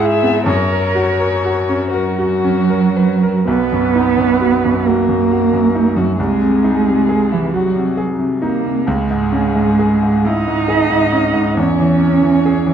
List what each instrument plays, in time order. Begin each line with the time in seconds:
Already playing: grand piano G#2 G#4, cello G#4
0.00 grand piano E4
0.05 violin E5
0.23 grand piano B3
0.46 grand piano F#2, cello A#4, violin C#5
0.72 grand piano A#4
0.95 grand piano F#4
1.19 grand piano A#4
1.45 grand piano F#4
1.69 grand piano C#4
1.92 cello F#3, violin F#4, grand piano A#4
2.19 grand piano F#4
2.44 grand piano C#4
2.70 grand piano A#4
2.96 grand piano B4
3.23 grand piano A#4
3.47 grand piano B1, cello B3, violin B4
3.72 grand piano F#2
3.95 grand piano D#4
4.18 grand piano F#2
4.41 grand piano F#4
4.65 grand piano F#2
4.85 cello A#3, grand piano F#4, violin A#4
5.09 grand piano F#2
5.31 grand piano F#4
5.53 grand piano F#2
5.75 grand piano D#4
5.96 grand piano F#2, cello F#3, violin F#4
6.18 grand piano C2, cello G#3, violin G#4
6.41 grand piano C3
6.64 grand piano D#4
6.88 grand piano C3
7.09 grand piano G#4
7.31 grand piano C3, cello E3, violin E4
7.52 cello F#3, violin F#4, grand piano F#4
7.75 grand piano C3
7.97 grand piano G#4
8.19 grand piano C3
8.42 cello A#3, grand piano D#4, violin A#4
8.64 grand piano C3
8.86 grand piano C#2, cello G#3, violin G#4
9.11 grand piano G#2
9.32 grand piano C#4
9.55 grand piano G#2
9.79 grand piano G#4
10.03 grand piano G#2
10.25 cello D#4, grand piano E4, violin D#5
10.48 grand piano G#2
10.68 grand piano G#4
10.90 grand piano G#2
11.12 grand piano C#4
11.34 grand piano G#2
11.57 grand piano E2, cello C#4, violin C#5
11.80 grand piano E3
12.00 grand piano C#4
12.22 grand piano E3
12.46 grand piano G#4
12.66 grand piano E3